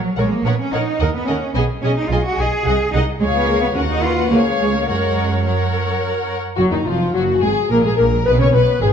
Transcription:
Already playing: F#3
0.15 A#1 G#3 A#4 C#5 F#5
0.32 A#3
0.44 A#1 B3 A#4 C#5 F#5
0.60 C#4
0.72 A#1 D#4 A#4 C#5 F#5
1.00 D#2 A#4 D#5 F#5
1.14 B3
1.27 D#2 C#4 A#4 D#5 F#5
1.54 B1 B3 G#4 D#5 G#5
1.82 B1 C#4 G#4 D#5 G#5
1.98 D#4
2.10 B1 F4 G#4 D#5 G#5
2.25 F#4
2.38 B1 G#4 D#5 G#5
2.65 C2 G#4 F#5
2.69 D#5
2.93 C2 D#4 G#4 D#5 F#5
3.20 C#2 G#3 G#4 C#5 F5
3.36 B3
3.47 A#3
3.62 B3
3.75 D#2 C#4 F#4 A#4 F#5
3.91 D#4
4.04 F4 B4
4.31 C#2 A#3 G#4 C#5 F5
4.60 G#3
4.75 A#3
4.87 F#2 G#3 A#4 C#5 F#5
5.45 F#3 A#4 C#5 F#5
6.57 F#1 F#2 F#3 F#4
6.71 D#2 D#3 D#4
6.85 F1 F2 F3 F4
7.14 F#1 F#2 F#3 F#4
7.41 G#1 G#2 G#3 G#4
7.69 A#1 A#2 A#3 A#4
7.84 G#2 G#3 G#4
7.96 A#1 A#2 A#3 A#4
8.25 B1 B2 B3 B4
8.39 C#3 C#4 C#5
8.53 B1 B2 B3 B4
8.81 G#1 G#2 G#3 G#4

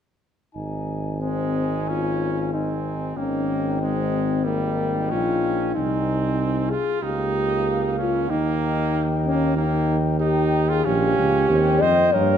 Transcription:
0.55 G#1 D#4 G#5
1.20 G#3 C4 D#4 G#5
1.89 C#4 F4
2.53 C4 D#4 G#5
3.16 G#1 A#3 C#4 D#4 G5
3.81 G#3 C4
4.44 G3 A#3 D#4 G5
5.10 A#1 C#4 F4
5.74 C2 C4 D#4 G#5
6.70 F4 G#4
7.02 C#2 A#3 D#4 G4 F5
7.98 C#4 F4
8.29 D#2 A#3 D#4 G5
9.25 A#3 C#4
9.56 A#3 D#4 G5
10.20 D#4 G4 G5
10.69 F4 G#4
10.84 A#1 C#4 G4 F5
11.18 C#2
11.48 D#2 C4 G5
11.81 F2 C5 D#5
12.13 G2 A#3 A#4 C#5 G5

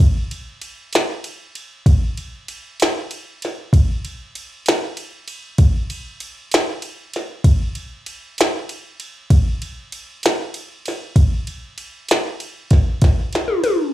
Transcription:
0.00 kick, ride
0.31 ride
0.61 ride
0.93 snare, ride
1.24 ride
1.55 ride
1.86 kick, ride
2.17 ride
2.48 ride
2.80 snare, ride
3.11 ride
3.42 snare, ride
3.73 kick, ride
4.05 ride
4.35 ride
4.66 snare, ride
4.97 ride
5.28 ride
5.58 kick, ride
5.90 ride
6.20 ride
6.51 snare, ride
6.82 ride
7.13 snare, ride
7.44 kick, ride
7.75 ride
8.06 ride
8.38 snare, ride
8.69 ride
9.00 ride
9.30 kick, ride
9.62 ride
9.92 ride
10.23 snare, ride
10.54 ride
10.86 snare, ride
11.16 kick, ride
11.47 ride
11.78 ride
12.09 snare, ride
12.40 ride
12.71 kick, snare, ride
13.02 kick, snare, ride
13.33 snare, ride
13.48 high tom
13.64 high tom, ride

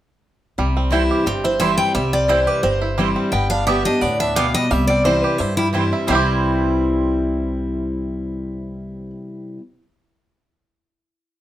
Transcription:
0.58 C2 C3 G3
0.77 C4
0.90 E3 G3 C4 E4 C5 G5
1.11 G4
1.26 G1 G2 C4 G4
1.44 E4 C5
1.60 E3 G3 C4 E4 C5 E5 G5
1.78 C4 G5
1.95 C2 C3 G3 E5
2.13 C4 D5
2.28 E3 G3 C4 E4 C5 G5
2.47 G4 B4
2.63 G1 G2 C4 C5
2.82 E4
2.98 E3 G3 C4 E4 C5 G5
3.16 C4
3.32 G1 G2 B3 G5
3.50 D4 F5
3.67 D3 G3 B3 G4 D5 E5 G5
3.85 B3 D4 G4 D#5
4.01 D2 A2 B3 D5
4.20 D4 E5
4.36 B2 B3 G4 D5 F5 G5
4.54 G3 D#5
4.71 C2 C3 G3 E5
4.87 C4 D5
5.04 E3 G3 C4 E4 C5 G5
5.23 G4 B4
5.38 G2 E4 C5
5.57 G3 E4
5.73 E3 G3 C4 E4 C5 G5
5.93 E4
6.07 C2 C3 E3 G3 C4 E4 C5 G5
6.13 E4 G4

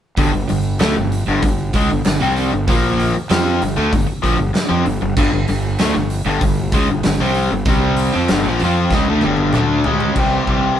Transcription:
0.17 G1 G2 D3, kick, open hi-hat
0.33 G1 G2 D3
0.49 G1 G2 D3, open hi-hat
0.80 D2 D3 A3, snare, clap, open hi-hat
0.97 G1 G2 D3
1.12 open hi-hat
1.28 G1 G2 D3
1.42 G1 G2 D3, kick, open hi-hat
1.74 C#2 C#3 G#3, kick, clap, open hi-hat
1.90 G1 G2 D3
2.05 G1 G2 D3, snare, clap, open hi-hat
2.22 C2 C3 G3 C4
2.36 open hi-hat
2.53 G1 G2 D3
2.68 A#1 A#2 F3 A#3, kick, open hi-hat
3.00 open hi-hat
3.14 muted overdriven electric guitar stroke, muted fingered electric bass stroke
3.30 F2 F3 C4 F4, snare, clap, open hi-hat
3.62 G1 G2 D3, open hi-hat
3.77 D2 D3 A3
3.93 G1 G2 D3, kick, open hi-hat
4.07 muted overdriven electric guitar stroke, muted fingered electric bass stroke
4.23 A#1 A#2 F3, kick, clap, open hi-hat
4.37 G1 G2 D3
4.54 muted overdriven electric guitar stroke, muted fingered electric bass stroke, snare, clap, open hi-hat
4.69 F2 F3 C4
4.85 G1 G2 D3, open hi-hat
5.02 G1 G2 D3
5.17 G1 G2 D3, kick, crash
5.33 G1 G2 D3
5.48 G1 G2 D3, open hi-hat
5.79 D2 D3 A3, snare, clap, open hi-hat
5.95 G1 G2 D3
6.10 open hi-hat
6.25 G1 G2 D3
6.41 G1 G2 D3, kick, open hi-hat
6.72 C#2 C#3 G#3, kick, clap, open hi-hat
6.89 G1 G2 D3
7.03 G1 G2 D3, snare, clap, open hi-hat
7.20 C2 C3 G3 C4
7.34 open hi-hat
7.52 G1 G2 D3
7.65 C2 C3 G3 C4, kick, open hi-hat
7.97 open hi-hat
8.15 F2 F3 C4
8.29 G1 G2 D3, snare, clap, open hi-hat
8.46 A#1 A#2 F3
8.59 F2 F3 C4 F4, open hi-hat
8.64 F3 C4 F4
8.91 C#2 C#3, kick, snare
8.95 G#3
9.08 D2 D3 A3
9.21 G1 G2 D3 G3, clap, high tom
9.37 high tom
9.53 D2 D3 A3 D4, clap, mid tom
9.84 C#2 C#3 G#3 C#4, floor tom
10.00 floor tom
10.16 C2 C3 E3 G3 C4, kick, crash
10.20 G4
10.47 C2 C3 E3 G3 C4 G4, kick

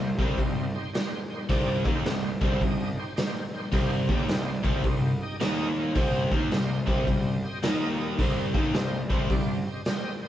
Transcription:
Already playing: C2 C3 G3 C5
0.18 C2 C3 G3 C4 D#4 G4 C5, kick
0.37 C2 C3 G3 D#4 G4 C5, kick, open hi-hat
0.74 D#4 G4 C5
0.93 D#4 G4 C5, snare, open hi-hat
1.30 D#4 G4 C5
1.49 C2 C3 G3 C4 D#4 G4 D5, kick, open hi-hat
1.84 D#2 D#3 A#3 D#4 G4 C5, kick
2.05 C2 C3 G3 D#4 G4 C5, snare, open hi-hat
2.41 C2 C3 G3 C4 D#4 G4 C5, kick
2.61 C2 C3 G3 D#4 G4, kick, open hi-hat
2.65 D#5
2.96 D#4 G4 C5
3.16 D#4 G4 C5, snare, open hi-hat
3.54 D#4 G4 C5
3.72 C2 C3 G3 C4 D#4 G4 C5, kick, open hi-hat
4.09 D#2 D#3 A#3 D#4 G4 D5, kick
4.29 C2 C3 G3 D#4 C5, snare, open hi-hat
4.33 G4
4.63 C2 C3 G3 C4 D#4 G4 C5, kick
4.84 C2 C3 G3 D#4 G4 C5, kick, open hi-hat
5.22 D#4 G4 D#5
5.40 D#2 D#3 A#3 D#4 A#4, snare, open hi-hat
5.44 D#5
5.79 D#4 A#4 C5
5.95 C2 C3 G3 C4 G4 C5 D#5, kick, open hi-hat
6.32 D#2 D#3 A#3 D#4 G4 C5 F5, kick
6.51 C2 C3 G3 G4 C5, snare, open hi-hat
6.55 D#5
6.87 C2 C3 G3 C4, kick
6.92 G4 C5 D#5
7.07 C2 C3 G3 G4 C5 D#5, kick, open hi-hat
7.44 G4 C5 D#5
7.63 D#2 D#3 A#3 D#4 A#4 D#5, snare, open hi-hat
8.00 D#4 A#4 D#5
8.18 C2 C3 G3 C4 G4 C5 D#5, kick, open hi-hat
8.54 D#2 D#3 A#3 D#4 G4 C5 D#5, kick
8.74 C2 C3 G3 G4 C5 D#5, snare, open hi-hat
9.10 C2 C3 G3 C4 G4 C5 D#5, kick
9.30 C2 C3 G3 G4 C5 D5, kick, open hi-hat
9.66 G4 C5 D#5
9.85 G4 C5 D#5, snare, open hi-hat
10.23 G4 C5 D#5

